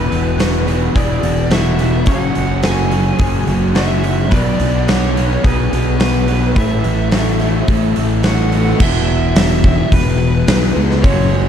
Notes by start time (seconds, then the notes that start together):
Already playing: E2 B2 E3 B3 E4 F#4 B4
0.10 E1 E2 B2 E3, open hi-hat
0.39 E2 B2 E3 B3 E4 F#4, snare, open hi-hat
0.43 B4
0.66 E2 B2 E3 E4 F#4 B4, open hi-hat
0.94 E1 E2 B2 E3 B3 E4 F#4 G#4 B4 D5, kick, open hi-hat
1.23 E1 E2 B2 E3, open hi-hat
1.49 E2 B2 E3 B3 E4 F#4 B4 E5, snare, open hi-hat
1.77 E2 E3 E4 F#4 B4, open hi-hat
1.82 B2
2.06 F#1 F#2 C#3 F#3 G#3 C#4 F#4 C#5 F#5, kick, open hi-hat
2.35 F#1 F#2 C#3 F#3, open hi-hat
2.61 F#2 C#3 F#3 G#3 C#4 F#4 C#5 G#5, snare, open hi-hat
2.90 F#2 F#3 C#4 F#4 C#5, open hi-hat
2.94 C#3
3.18 F#1 F#2 C#3 G#3 C#4 F#4 G#4 C#5, kick, open hi-hat
3.22 F#3
3.47 F#1 F#2 F#3, open hi-hat
3.52 C#3
3.74 F#2 C#3 F#3 G#3 C#4 F#4 C#5 E5, snare, open hi-hat
4.03 F#2 F#3 C#4 F#4 C#5, open hi-hat
4.07 C#3
4.30 B1 B2 F#3 B3 D4 F#4 B4 D5, kick, open hi-hat
4.35 B3
4.60 B1 B2 F#3 B3, open hi-hat
4.86 B2 F#3 B3 D4 F#4 B4 C#5, snare, open hi-hat
4.90 B3
5.14 B2 F#3 B3 D4 F#4 B4, open hi-hat
5.43 B1 B2 F#3 B3 D4 F#4 G#4 B4, kick, open hi-hat
5.72 B1 B2 F#3 B3, open hi-hat
5.99 B2 F#3 B3 D4 F#4 B4, snare, open hi-hat
6.04 B3
6.27 B2 B3 D4 F#4 B4, open hi-hat
6.31 F#3
6.54 A1 A2 A3 B3 E4 A4 B4, kick, open hi-hat
6.58 A2 E3 A3 C#5 E5
6.83 A1 A2 A3, open hi-hat
6.87 E3
7.11 A2 B3 E4 F#4 A4 C#5, snare, open hi-hat
7.16 E3 A3
7.39 A2 E3 A3 E4 A4 C#5, open hi-hat
7.68 A1 A2 E3 A3 B3 E4 A4 C#5, kick, open hi-hat
7.94 A1 A2 A3, open hi-hat
7.98 E3
8.23 A2 E3 A3 B3 E4 F#4 A4 C#5, snare, open hi-hat
8.27 F#5
8.50 A2 A3 A4 C#5, open hi-hat
8.55 E3 E4
8.79 E1 E2 B2 E3 B3 E4 F#4 B4 E5, kick, crash
9.08 B2 E3
9.36 E2 B2 E3 E5, snare, open hi-hat
9.64 B2 E3, kick
9.92 E1 E2 B2 E3 B4, kick, open hi-hat
10.19 B2 E3
10.48 B1 E2 B2 E3, snare, open hi-hat
10.76 C#2 B2 E3
10.91 snare
11.03 F#1 F#2 C#3 F#3 G#3 C#4 F#4 C#5, kick, open hi-hat
11.32 C#3 F#3